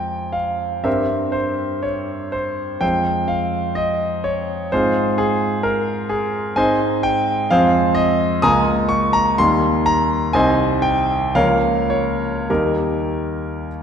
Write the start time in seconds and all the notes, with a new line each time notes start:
Already playing: F2 G#3 C4 F4 F5 G5 G#5 A#5
0.32 F5
0.83 G2 G3 C4 A#4 C5 E5
1.32 C5
1.83 C#5
2.32 C5
2.81 F2 G#3 C4 F4 C5 G5
3.28 F5
3.75 D#5
4.24 C#5
4.72 G#2 G#3 C4 F4 G#4 C5
5.18 G#4
5.63 A#4
6.09 G#4
6.56 G#2 G#3 C4 D#4 C5 D#5 G#5
7.03 G5
7.50 F2 G#3 C4 F4 G#4 C5 F5
7.95 D#5
8.42 C#2 G#3 A#3 F4 G#5 A#5 D#6
8.89 C#6
9.13 A#5
9.38 D#2 G3 A#3 D#4 C6
9.86 A#5
10.33 C2 D#3 C4 D#4 C5 D#5 G#5
10.82 G5
11.35 C#2 F3 A#3 C#4 A#4 C#5 F5
11.90 C#5
12.50 D#2 G3 A#3 D#4 G4 A#4